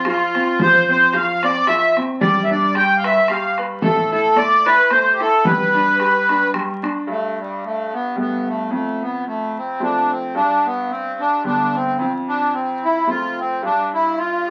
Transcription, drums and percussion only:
0.05 bodhran medium
0.35 bodhran medium
0.60 bodhran medium
1.13 bodhran medium
1.43 bodhran medium
1.67 bodhran medium
1.97 bodhran medium
2.21 bodhran medium
2.75 bodhran medium
3.04 bodhran medium
3.28 bodhran medium
3.58 bodhran medium
3.82 bodhran medium
4.37 bodhran medium
4.66 bodhran medium
4.90 bodhran medium
5.20 bodhran medium
5.45 bodhran medium
6.00 bodhran medium
6.29 bodhran medium
6.54 bodhran medium
6.84 bodhran medium

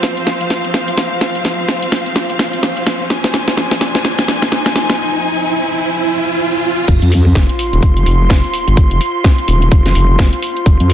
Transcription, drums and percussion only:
0.03 snare medium
0.03 open hi-hat loud
0.17 closed hi-hat soft
0.27 snare medium
0.27 closed hi-hat medium
0.41 closed hi-hat soft
0.50 snare medium
0.50 open hi-hat loud
0.64 closed hi-hat soft
0.74 snare medium
0.74 closed hi-hat medium
0.88 closed hi-hat soft
0.98 snare medium
0.98 open hi-hat loud
1.21 snare medium
1.21 closed hi-hat medium
1.35 closed hi-hat medium
1.45 snare medium
1.45 open hi-hat loud
1.68 snare medium
1.68 closed hi-hat medium
1.83 closed hi-hat soft
1.92 snare medium
1.92 open hi-hat loud
2.06 closed hi-hat soft
2.16 snare medium
2.16 closed hi-hat medium
2.30 closed hi-hat medium
2.39 snare medium
2.39 open hi-hat loud
2.53 closed hi-hat soft
2.63 snare medium
2.63 closed hi-hat medium
2.77 closed hi-hat medium
2.87 snare medium
2.87 open hi-hat loud
3.10 snare medium
3.10 closed hi-hat medium
3.24 snare medium
3.24 closed hi-hat medium
3.34 snare medium
3.34 open hi-hat loud
3.48 snare medium
3.57 snare medium
3.57 closed hi-hat medium
3.71 snare medium
3.71 closed hi-hat medium
3.81 snare loud
3.81 open hi-hat loud
3.95 snare medium
3.95 closed hi-hat soft
4.05 snare medium
4.05 closed hi-hat medium
4.19 snare medium
4.19 closed hi-hat medium
4.28 snare loud
4.28 open hi-hat loud
4.42 snare medium
4.42 closed hi-hat soft
4.52 snare loud
4.52 closed hi-hat medium
4.66 snare medium
4.66 closed hi-hat medium
4.76 snare loud
4.76 open hi-hat loud
4.90 snare medium
6.88 kick loud
6.88 closed hi-hat medium
6.88 crash loud
7.02 closed hi-hat medium
7.12 open hi-hat loud
7.35 kick loud
7.35 snare loud
7.35 closed hi-hat medium
7.49 closed hi-hat medium
7.59 open hi-hat loud
7.73 closed hi-hat soft
7.83 kick loud
7.83 closed hi-hat medium
7.97 closed hi-hat medium
8.06 open hi-hat loud
8.30 kick loud
8.30 snare loud
8.30 closed hi-hat medium
8.44 closed hi-hat medium
8.54 open hi-hat loud
8.68 closed hi-hat soft
8.77 kick loud
8.77 closed hi-hat medium
8.91 closed hi-hat medium
9.01 open hi-hat loud
9.24 kick loud
9.24 snare loud
9.24 closed hi-hat medium
9.38 closed hi-hat medium
9.48 open hi-hat loud
9.62 closed hi-hat soft
9.72 kick loud
9.72 closed hi-hat medium
9.86 snare soft
9.86 closed hi-hat medium
9.95 open hi-hat loud
10.19 kick loud
10.19 snare loud
10.19 closed hi-hat medium
10.33 closed hi-hat medium
10.42 open hi-hat loud
10.57 closed hi-hat soft
10.66 kick loud
10.66 closed hi-hat medium
10.80 closed hi-hat medium
10.90 open hi-hat loud

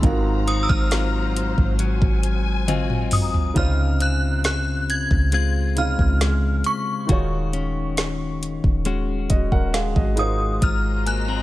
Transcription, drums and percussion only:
0.03 kick loud
0.03 closed hi-hat medium
0.48 closed hi-hat medium
0.70 kick loud
0.91 snare loud
0.91 closed hi-hat medium
1.37 closed hi-hat medium
1.58 kick medium
1.79 closed hi-hat medium
2.02 kick loud
2.23 closed hi-hat medium
2.68 closed hi-hat medium
2.68 high tom medium
2.90 mid tom medium
3.11 mid tom loud
3.11 open hi-hat medium
3.34 floor tom medium
3.56 kick loud
3.56 closed hi-hat medium
4.00 closed hi-hat medium
4.44 snare loud
4.44 closed hi-hat medium
4.90 closed hi-hat medium
5.11 kick medium
5.32 closed hi-hat medium
5.77 closed hi-hat medium
5.99 kick medium
6.21 snare loud
6.21 closed hi-hat medium
6.64 closed hi-hat medium
7.09 kick loud
7.09 closed hi-hat medium
7.53 closed hi-hat medium
7.97 snare loud
7.97 closed hi-hat medium
8.43 closed hi-hat medium
8.64 kick medium
8.85 closed hi-hat medium
9.30 kick medium
9.30 closed hi-hat medium
9.52 kick medium
9.74 snare loud
9.74 closed hi-hat medium
9.96 kick medium
10.17 closed hi-hat medium
10.62 kick loud
10.62 closed hi-hat medium
11.07 closed hi-hat medium

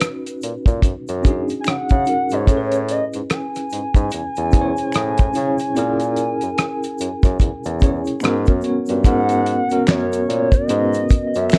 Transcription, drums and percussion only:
0.01 finger snap medium
0.01 cross-stick medium
0.01 closed hi-hat medium
0.01 shaker medium
0.26 closed hi-hat soft
0.26 shaker soft
0.41 closed hi-hat medium
0.41 shaker soft
0.66 kick medium
0.66 closed hi-hat soft
0.66 shaker soft
0.82 kick medium
0.82 closed hi-hat medium
0.82 shaker soft
1.08 closed hi-hat soft
1.08 shaker soft
1.24 kick medium
1.24 closed hi-hat medium
1.24 shaker soft
1.48 closed hi-hat soft
1.48 shaker soft
1.64 finger snap medium
1.64 cross-stick loud
1.64 closed hi-hat medium
1.64 shaker medium
1.89 kick medium
1.89 closed hi-hat soft
1.89 shaker soft
2.05 closed hi-hat medium
2.05 shaker soft
2.30 closed hi-hat soft
2.30 shaker soft
2.47 kick medium
2.47 closed hi-hat medium
2.47 shaker medium
2.72 closed hi-hat soft
2.72 shaker soft
2.89 closed hi-hat medium
2.89 shaker soft
3.13 closed hi-hat soft
3.13 shaker soft
3.30 finger snap medium
3.30 cross-stick medium
3.30 closed hi-hat medium
3.30 shaker medium
3.55 cross-stick soft
3.55 closed hi-hat soft
3.55 shaker soft
3.70 closed hi-hat medium
3.70 shaker soft
3.94 kick medium
3.94 closed hi-hat soft
3.94 shaker soft
4.11 closed hi-hat medium
4.11 shaker soft
4.36 closed hi-hat soft
4.36 shaker soft
4.51 kick medium
4.51 closed hi-hat medium
4.51 shaker soft
4.77 closed hi-hat soft
4.77 shaker soft
4.92 finger snap medium
4.92 cross-stick medium
4.92 closed hi-hat medium
4.92 shaker medium
5.17 kick medium
5.17 closed hi-hat soft
5.17 shaker soft
5.33 closed hi-hat medium
5.33 shaker soft
5.58 closed hi-hat soft
5.58 shaker soft
5.76 closed hi-hat medium
5.76 shaker medium
6.00 closed hi-hat soft
6.00 shaker soft
6.16 closed hi-hat soft
6.16 shaker soft
6.41 closed hi-hat soft
6.41 shaker soft
6.58 finger snap medium
6.58 cross-stick loud
6.58 closed hi-hat medium
6.58 shaker medium
6.83 closed hi-hat soft
6.83 shaker soft
6.98 closed hi-hat medium
6.98 shaker soft
7.23 kick medium
7.23 cross-stick soft
7.23 closed hi-hat soft
7.23 shaker soft
7.39 kick medium
7.39 closed hi-hat medium
7.39 shaker soft
7.64 closed hi-hat soft
7.64 shaker soft
7.80 kick medium
7.80 closed hi-hat medium
7.80 shaker soft
8.05 closed hi-hat soft
8.05 shaker soft
8.20 finger snap medium
8.20 closed hi-hat medium
8.20 shaker medium
8.25 cross-stick loud
8.46 kick medium
8.46 closed hi-hat soft
8.46 shaker soft
8.61 closed hi-hat medium
8.61 shaker soft
8.86 closed hi-hat soft
8.86 shaker soft
9.04 kick medium
9.04 closed hi-hat medium
9.04 shaker medium
9.29 closed hi-hat soft
9.29 shaker soft
9.46 closed hi-hat medium
9.70 closed hi-hat soft
9.70 shaker soft
9.87 finger snap medium
9.87 snare loud
9.87 closed hi-hat medium
9.87 shaker medium
9.89 finger snap medium
10.12 closed hi-hat soft
10.12 shaker soft
10.30 closed hi-hat medium
10.52 kick medium
10.52 closed hi-hat soft
10.52 shaker soft
10.69 closed hi-hat medium
10.69 shaker soft
10.93 closed hi-hat soft
10.93 shaker soft
11.09 kick medium
11.09 closed hi-hat medium
11.09 shaker soft
11.34 closed hi-hat soft
11.34 shaker soft
11.50 finger snap medium
11.50 snare loud
11.50 closed hi-hat medium
11.50 shaker medium
11.54 finger snap medium

